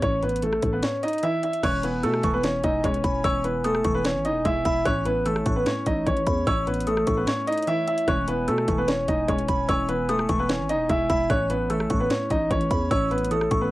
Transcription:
Already playing: E3
0.02 A1 A2 C#4 C#5, kick, closed hi-hat
0.23 A2 B3 B4, closed hi-hat
0.29 closed hi-hat
0.36 closed hi-hat
0.42 E3 A3 A4, closed hi-hat
0.53 cross-stick
0.62 A1 A2, kick, closed hi-hat
0.73 B3 B4
0.83 A2 C#4 C#5, snare, closed hi-hat
1.03 D#4 D#5, closed hi-hat
1.08 closed hi-hat
1.13 closed hi-hat
1.18 closed hi-hat
1.23 E3 E4 E5, closed hi-hat
1.43 E4 E5, closed hi-hat, open hi-hat
1.53 closed hi-hat
1.63 E1 E3 B3 C#4 E4 C#5 G#5 F#6, kick, closed hi-hat, crash
1.83 E3 B3 B4, closed hi-hat
2.03 B2 A3 B3 A4 E6, cross-stick, closed hi-hat
2.14 cross-stick
2.23 E1 E3 C#6, kick, closed hi-hat
2.34 B3 B4
2.44 E3 C#4 C#5, snare, closed hi-hat
2.64 E1 D#4 D#5, kick, closed hi-hat
2.84 E1 G#3 C#4 C#5, kick, closed hi-hat
2.94 closed hi-hat
3.04 E1 B5, kick, closed hi-hat
3.24 E1 E3 C#4 C#5 E6, kick, closed hi-hat
3.44 E3 B3 B4, closed hi-hat
3.65 A3 B3 A4 D#6, cross-stick, closed hi-hat
3.75 cross-stick
3.85 E1 E3 C#6, kick, closed hi-hat
3.95 B3 B4
4.05 E3 C#4 C#5, snare, closed hi-hat
4.15 G#1
4.25 D#4 D#5, closed hi-hat
4.30 E1
4.45 E1 G#3 E4 E5, kick, closed hi-hat
4.65 E1 E4 E5 B5, kick, closed hi-hat
4.85 A1 A2 A3 C#4 C#5 F#6, kick, closed hi-hat
5.06 A2 B3 B4, closed hi-hat
5.26 E3 A3 A4 E6, cross-stick, closed hi-hat
5.36 cross-stick
5.46 A1 A2 C#6, kick, closed hi-hat
5.56 B3 B4
5.66 A2 C#4 C#5, snare, closed hi-hat
5.86 A1 D#4 D#5, kick, closed hi-hat
6.06 A1 E3 C#4 C#5, kick, closed hi-hat
6.16 closed hi-hat
6.26 E2 B5, kick, closed hi-hat
6.47 A1 A2 C#4 C#5 E6, kick, closed hi-hat
6.67 A2 B3 B4, closed hi-hat
6.74 closed hi-hat
6.80 closed hi-hat
6.87 E3 A3 A4 D#6, closed hi-hat
6.97 cross-stick
7.07 A1 A2 C#6, kick, closed hi-hat
7.17 B3 B4
7.27 A2 C#4 C#5, snare, closed hi-hat
7.47 D#4 D#5, closed hi-hat
7.52 closed hi-hat
7.57 closed hi-hat
7.62 closed hi-hat
7.67 E3 E4 E5, closed hi-hat
7.87 E4 E5, closed hi-hat, open hi-hat
7.98 closed hi-hat
8.08 E1 E3 B3 C#4 C#5 G#5 F#6, kick, closed hi-hat
8.28 E3 B3 B4, closed hi-hat
8.48 B2 A3 B3 A4 E6, cross-stick, closed hi-hat
8.58 cross-stick
8.68 E1 E3 C#6, kick, closed hi-hat
8.78 B3 B4
8.88 E3 C#4 C#5, snare, closed hi-hat
9.08 E1 D#4 D#5, kick, closed hi-hat
9.28 E1 G#3 C#4 C#5, kick, closed hi-hat
9.39 closed hi-hat
9.48 E1 B5, kick, closed hi-hat
9.69 E1 E3 C#4 C#5 E6, kick, closed hi-hat
9.89 E3 B3 B4, closed hi-hat
10.09 A3 B3 A4 D#6, cross-stick, closed hi-hat
10.19 cross-stick
10.29 E1 E3 C#6, kick, closed hi-hat
10.39 B3 B4
10.49 E3 C#4 C#5, snare, closed hi-hat
10.59 G#1
10.69 D#4 D#5, closed hi-hat
10.74 E1
10.89 E1 G#3 E4 E5, kick, closed hi-hat
11.10 E1 E4 E5 B5, kick, closed hi-hat
11.30 A1 A2 A3 C#4 E4 C#5 F#6, kick, closed hi-hat
11.50 A2 B3 B4, closed hi-hat
11.70 E3 A3 A4 E6, cross-stick, closed hi-hat
11.80 cross-stick
11.90 A1 A2 C#6, kick, closed hi-hat
12.00 B3 B4
12.10 A2 C#4 C#5, snare, closed hi-hat
12.30 A1 D#4 D#5, kick, closed hi-hat
12.51 A1 E3 C#4 C#5, kick, closed hi-hat
12.61 closed hi-hat
12.71 E2 B5, kick, closed hi-hat
12.91 A1 A2 C#4 C#5 E6, kick, closed hi-hat
13.11 A2 B3 B4, closed hi-hat
13.18 closed hi-hat
13.25 closed hi-hat
13.31 E3 A3 A4 D#6, closed hi-hat
13.41 cross-stick
13.51 A1 A2 C#6, kick, closed hi-hat
13.61 B3 B4

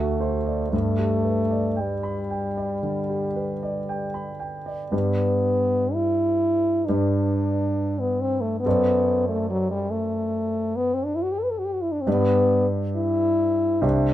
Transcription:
Already playing: D2 A3 F#4
0.20 C5
0.46 D5
0.72 G2 A3
0.98 G4
1.24 B4
1.51 D5
1.76 G3 G5
2.03 B5
2.30 G5
2.57 D5
2.83 D3
3.09 G4
3.36 B4
3.63 D5
3.89 G5
4.14 B5
4.39 G5
4.66 D5
4.92 G2 B3 G4 B4 D5
5.94 E4
6.86 G2 D4 G4 B4 D5
8.00 B3
8.21 C4
8.41 A3
8.60 B3
8.66 F#2 A4 C5 D5
9.29 A3
9.50 F#3
9.71 G3
9.91 A3
10.76 B3
10.94 C4
11.05 D4
11.15 E4
11.23 F#4
11.32 G4
11.39 A4
11.43 B4
11.51 A4
11.59 F#4
11.65 G4
11.73 F#4
11.83 E4
11.92 D4
12.01 C4
12.07 G2 B3 G4 B4 D5
12.96 E4
13.82 C2 D4 G4 C5 E5

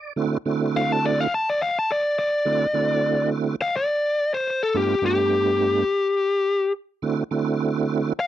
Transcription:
Already playing: D5
0.16 D3 A3 C4 E4 F#4
0.46 D3 A3 C4 E4 F#4
0.77 F5
0.92 A5
1.06 D5
1.21 F5
1.34 A5
1.50 D5
1.62 F5
1.79 A5
1.92 D5
2.19 D5
2.45 D3 A3 C4 E4 F#4
2.73 D3 A3 C4 E4 F#4
3.62 F5
3.77 D5
4.34 C5
4.63 A4
4.74 G2 A3 B3 D4 F4 G4
5.02 G2 A3 B3 D4 G4
5.06 G4
7.02 D3 A3 C4 E4 F#4
7.31 D3 A3 C4 E4 F#4
8.20 F5

